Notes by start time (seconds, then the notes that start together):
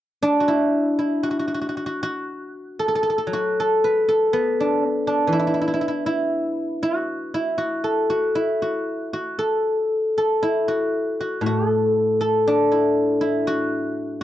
0.23 D4
0.40 F#4
0.48 E4
0.99 E4
1.23 F#4
1.31 F#4
1.39 F#4
1.48 F#4
1.54 F#4
1.61 F#4
1.69 F#4
1.77 F#4
1.86 F#4
2.03 F#4
2.79 A4
2.88 A4
2.95 A4
3.03 A4
3.10 A4
3.18 A4
3.27 F#3
3.33 F#4
3.60 A4
3.84 B4
4.08 A4
4.33 B3
4.60 D4
4.89 B3
5.07 D4
5.27 E3
5.32 E4
5.39 E4
5.47 E4
5.54 E4
5.61 E4
5.68 E4
5.74 E4
5.81 E4
5.88 E4
6.06 E4
6.83 F#4
7.34 E4
7.58 F#4
7.84 A4
8.10 F#4
8.35 E4
8.62 F#4
9.13 F#4
9.39 A4
10.18 A4
10.43 E4
10.68 F#4
11.20 F#4
11.41 A2
11.46 F#4
11.68 A4
12.21 A4
12.47 D4
12.72 E4
13.21 E4
13.47 F#4